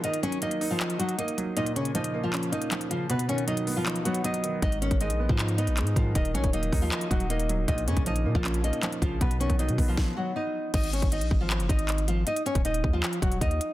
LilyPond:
<<
  \new Staff \with { instrumentName = "Nylon-string guitar" } { \time 4/4 \key aes \dorian \tempo 4 = 157 <ees' ees''>8 <des' des''>8 <ees' ees''>8. <f f'>8. <ges ges'>8 <ees' ees''>4 | <ees' ees''>8 <des' des''>8 <ees' ees''>8. <f f'>8. <ees' ees''>4 <f f'>8 | <b b'>8 <des' des''>8 <dis' dis''>8. <f f'>8. <fis fis'>8 <dis' dis''>4 | <ees' ees''>8 <des' des''>8 <ees' ees''>8. <f f'>8. <ees' ees''>4 <f f'>8 |
<ees' ees''>8 <des' des''>8 <ees' ees''>8. <f f'>8. <ges ges'>8 <ees' ees''>4 | <ees' ees''>8 <des' des''>8 <ees' ees''>8. <f f'>8. <ees' ees''>4 <f f'>8 | <b b'>8 <des' des''>8 <dis' dis''>8. <f f'>8. <fis fis'>8 <dis' dis''>4 | <ees' ees''>8 <des' des''>8 <ees' ees''>8. <f f'>8. <ees' ees''>4 <f f'>8 |
<ees' ees''>8 <des' des''>8 <ees' ees''>8. <f f'>8. <ges ges'>8 <ees' ees''>4 | }
  \new Staff \with { instrumentName = "Grand piano" } { \clef bass \time 4/4 \key aes \dorian ees8 ges8 bes8 ees'8 ees''8 ees'8 bes8 ges8 | bes,8 des8 f8 bes8 des'8 bes8 f8 des8 | b,8 dis8 fis8 b8 dis'8 b8 fis8 dis8 | aes,8 ees8 aes8 ces'8 ees'8 ces'8 aes8 ees8 |
ees8 ges8 bes8 ees'8 ees''8 ees'8 bes8 ges8 | bes,8 des8 f8 bes8 des'8 bes8 f8 des8 | b,8 dis8 fis8 b2~ b8 | r1 |
r1 | }
  \new Staff \with { instrumentName = "808-style bass" } { \clef bass \time 4/4 \key aes \dorian r1 | r1 | r1 | aes,,8. aes,,8 bes,,8 aes,4 bes,,16. aes,16. aes,8 |
ees,,8 bes,,16 ees,,8. ees,8 r8 ees,,4. | bes,,8 f,16 bes,,8. bes,16 bes,,4 r8. bes,,8 | b,,8. b,,8 b,16 b,,8 r2 | aes,,8. aes,,8 bes,,16 aes,,8. ges,,16 aes,,4. |
r8. ees,,8. ees,8 r8 ees,,8 ees,8 r8 | }
  \new DrumStaff \with { instrumentName = "Drums" } \drummode { \time 4/4 hh16 hh16 hh16 hh16 hh16 hh16 hho8 <hc hh>16 hh16 hh16 hh16 hh16 hh16 hh8 | hh16 hh16 hh16 hh16 hh16 hh8. <hc hh>16 hh16 hh16 hh16 <hc hh>16 hh16 hh8 | hh16 hh16 hh16 hh16 hh16 hh16 hho8 <hc hh>16 hh16 hh16 hh16 hh16 hh16 hh8 | <hh bd>16 hh16 hh16 <hh bd>16 hh16 hh8 bd16 <hc hh>16 hh16 hh16 hh16 <hc hh>16 hh16 <hh bd>8 |
<hh bd>16 hh16 hh16 <hh bd>16 hh16 hh16 <hho bd>8 <hc hh>16 hh16 <hh bd>16 hh16 hh16 hh16 hh8 | <hh bd>16 hh16 hh16 <hh bd>16 hh16 hh8 bd16 <hc hh>16 hh16 hh16 hh16 <hc hh>16 hh16 <hh bd>8 | <hh bd>16 hh16 hh16 <hh bd>16 hh16 hh16 <hho bd>8 <bd sn>4 r4 | <cymc hh bd>16 hh16 hh16 <hh bd>16 hh16 hh16 bd8 <hc hh>16 hh16 <hh bd>16 hh16 <hc hh>16 hh16 hh8 |
hh16 hh16 hh16 <hh bd>16 hh16 hh16 bd8 <hc hh>16 hh16 <hh bd>16 hh16 <hh bd>16 hh16 hh8 | }
>>